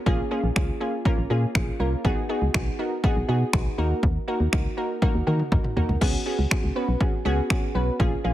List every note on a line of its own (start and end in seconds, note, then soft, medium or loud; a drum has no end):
0.06 0.22 A#1 loud
0.06 0.19 A#3 loud
0.06 0.19 C#4 loud
0.06 0.19 F4 loud
0.06 0.19 G#4 loud
0.06 kick loud
0.31 0.44 A#3 medium
0.31 0.44 C#4 medium
0.31 0.44 F4 medium
0.31 0.44 G#4 loud
0.43 0.51 A#1 medium
0.56 0.71 C#2 medium
0.56 0.69 A#3 medium
0.56 0.69 C#4 medium
0.56 0.69 F4 medium
0.56 0.69 G#4 medium
0.56 finger snap loud
0.56 kick loud
0.80 0.93 A#3 medium
0.80 0.93 C#4 medium
0.80 0.94 F4 medium
0.80 0.94 G#4 medium
1.05 1.18 A#3 loud
1.05 1.18 C#4 loud
1.05 1.18 F4 loud
1.05 1.18 A#4 loud
1.05 kick loud
1.18 1.26 A#1 medium
1.30 1.46 A#2 loud
1.30 1.43 A#3 medium
1.30 1.43 C#4 medium
1.30 1.43 F4 medium
1.30 1.43 G#4 loud
1.55 1.70 A#1 loud
1.55 1.68 A#3 medium
1.55 1.68 C#4 medium
1.55 1.68 F4 medium
1.55 1.68 G#4 medium
1.55 finger snap loud
1.55 kick loud
1.80 1.95 C2 medium
1.80 1.92 A#3 medium
1.80 1.93 C#4 medium
1.80 1.93 F4 medium
1.80 1.93 A#4 loud
2.05 2.12 B1 loud
2.05 2.17 B3 loud
2.05 2.17 D#4 loud
2.05 2.17 F#4 loud
2.05 2.18 G#4 loud
2.05 kick loud
2.29 2.42 B3 medium
2.29 2.42 D#4 medium
2.29 2.42 F#4 medium
2.29 2.42 G#4 loud
2.42 2.50 C#2 medium
2.54 2.70 B1 medium
2.54 2.67 B3 medium
2.54 2.67 D#4 medium
2.54 2.67 F#4 medium
2.54 2.67 G#4 medium
2.54 finger snap loud
2.54 kick loud
2.79 2.92 B3 medium
2.79 2.92 D#4 medium
2.79 2.92 F#4 medium
2.79 2.92 A#4 medium
3.04 3.16 B3 loud
3.04 3.17 D#4 loud
3.04 3.17 F#4 loud
3.04 3.17 G#4 loud
3.04 kick loud
3.16 3.24 B1 medium
3.28 3.44 B2 loud
3.28 3.41 B3 medium
3.28 3.41 D#4 medium
3.28 3.41 F#4 medium
3.28 3.42 G#4 loud
3.53 3.69 B1 medium
3.53 3.66 B3 medium
3.53 3.66 D#4 medium
3.53 3.66 F#4 medium
3.53 3.66 G#4 medium
3.53 finger snap loud
3.53 kick loud
3.78 3.94 D#2 loud
3.78 4.18 A#3 medium
3.78 4.18 D#4 medium
3.78 4.18 F#4 medium
3.78 4.18 A#4 loud
4.03 4.18 D#2 loud
4.03 kick loud
4.28 4.40 A#3 medium
4.28 4.41 D#4 medium
4.28 4.41 F#4 medium
4.28 4.41 A#4 loud
4.40 4.48 D#2 loud
4.52 4.68 C#2 medium
4.52 4.65 A#3 medium
4.52 4.65 D#4 medium
4.52 4.65 F#4 medium
4.52 4.66 A#4 medium
4.52 finger snap loud
4.52 kick loud
4.77 4.90 A#3 medium
4.77 4.90 D#4 medium
4.77 4.90 F#4 medium
4.77 4.90 A#4 loud
5.02 5.15 A#3 loud
5.02 5.15 D#4 loud
5.02 5.15 F#4 loud
5.02 5.15 A#4 loud
5.02 kick loud
5.02 high tom medium
5.15 5.22 D#2 medium
5.27 5.42 D#3 loud
5.27 5.40 A#3 medium
5.27 5.40 D#4 medium
5.27 5.40 F#4 medium
5.27 5.40 A#4 loud
5.27 mid tom medium
5.39 mid tom medium
5.52 5.60 D#2 loud
5.52 5.64 A#3 medium
5.52 5.65 D#4 medium
5.52 5.65 F#4 medium
5.52 5.65 A#4 medium
5.52 kick loud
5.52 mid tom medium
5.64 mid tom medium
5.76 5.84 D#2 medium
5.76 5.89 A#3 medium
5.76 5.89 D#4 medium
5.76 5.89 F#4 medium
5.76 5.90 A#4 medium
5.76 floor tom medium
5.89 5.97 C#2 medium
5.89 floor tom medium
6.01 6.17 C#2 loud
6.01 6.14 B3 loud
6.01 6.14 C#4 loud
6.01 6.14 F#4 loud
6.01 6.14 G#4 loud
6.01 kick loud
6.01 crash medium
6.26 6.39 B3 medium
6.26 6.39 C#4 medium
6.26 6.39 F#4 medium
6.26 6.39 G#4 loud
6.39 6.46 C#2 loud
6.51 6.64 B3 medium
6.51 6.64 C#4 medium
6.51 6.64 F#4 medium
6.51 6.64 G#4 medium
6.51 finger snap loud
6.51 kick loud
6.63 6.71 C#2 medium
6.76 6.88 B3 medium
6.76 6.88 C#4 medium
6.76 6.89 F#4 medium
6.76 6.89 B4 medium
6.88 6.96 B1 medium
7.00 7.13 B3 medium
7.00 7.13 C#4 medium
7.00 7.13 F#4 medium
7.00 7.13 G#4 medium
7.00 kick loud
7.25 7.41 C#2 loud
7.25 7.38 B3 loud
7.25 7.38 C#4 loud
7.25 7.38 F#4 loud
7.25 7.38 G#4 loud
7.50 7.63 B3 loud
7.50 7.63 C#4 loud
7.50 7.63 F#4 loud
7.50 7.63 G#4 loud
7.50 finger snap loud
7.50 kick loud
7.75 7.90 B1 medium
7.75 7.88 B3 medium
7.75 7.88 C#4 medium
7.75 7.88 F#4 medium
7.75 7.88 B4 medium
7.99 8.15 A#1 loud
7.99 8.12 A#3 loud
7.99 8.12 C#4 loud
7.99 8.13 F4 loud
7.99 8.13 G#4 loud
7.99 kick loud
8.24 8.34 A#1 loud
8.24 8.34 A#3 medium
8.24 8.34 C#4 medium
8.24 8.34 F4 medium
8.24 8.34 G#4 loud